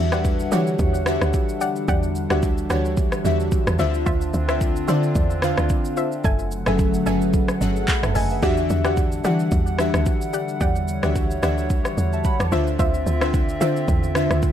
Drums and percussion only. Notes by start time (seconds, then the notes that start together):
0.12 cross-stick, shaker
0.24 kick, shaker
0.40 shaker
0.52 shaker
0.67 shaker
0.79 kick, shaker
0.94 shaker
1.06 cross-stick, shaker
1.21 cross-stick, shaker
1.33 kick, shaker
1.49 shaker
1.61 shaker
1.76 shaker
1.88 kick, shaker
2.03 shaker
2.15 shaker
2.30 cross-stick, shaker
2.43 kick, shaker
2.58 shaker
2.70 cross-stick, shaker
2.85 shaker
2.97 kick, shaker
3.12 cross-stick, shaker
3.25 shaker
3.40 shaker
3.51 kick, shaker
3.67 cross-stick, shaker
3.79 shaker
3.94 shaker
4.06 kick, shaker
4.21 shaker
4.34 shaker
4.49 cross-stick, shaker
4.61 kick, shaker
4.76 shaker
4.88 shaker
5.03 shaker
5.15 kick, shaker
5.30 shaker
5.42 cross-stick, shaker
5.58 cross-stick, shaker
5.69 kick, shaker
5.85 shaker
5.97 shaker
6.12 shaker
6.24 kick, shaker
6.39 shaker
6.51 shaker
6.66 cross-stick, shaker
6.79 kick, shaker
6.94 shaker
7.06 shaker
7.21 shaker
7.33 kick, shaker
7.48 cross-stick, shaker
7.61 shaker
7.76 shaker
7.88 kick, clap, shaker
8.03 cross-stick, mid tom, shaker
8.15 open hi-hat, shaker
8.30 shaker
8.42 kick, shaker
8.57 shaker
8.70 shaker
8.85 cross-stick, shaker
8.97 kick, shaker
9.12 shaker
9.24 shaker
9.39 shaker
9.51 kick, shaker
9.67 shaker
9.79 cross-stick, shaker
9.94 cross-stick, shaker
10.06 kick, shaker
10.21 shaker
10.33 shaker
10.48 shaker
10.61 kick, shaker
10.76 shaker
10.88 shaker
11.03 cross-stick, shaker
11.15 kick, shaker
11.31 shaker
11.43 cross-stick, shaker
11.58 shaker
11.70 kick, shaker
11.85 cross-stick, shaker
11.98 shaker
12.13 shaker
12.24 kick, shaker
12.40 cross-stick, shaker
12.52 shaker
12.67 shaker
12.79 kick, shaker
12.94 shaker
13.07 shaker
13.21 cross-stick, shaker
13.34 kick, shaker
13.49 shaker
13.61 shaker
13.76 shaker
13.88 kick, shaker
14.03 shaker
14.15 cross-stick, shaker
14.31 cross-stick, shaker
14.42 kick, shaker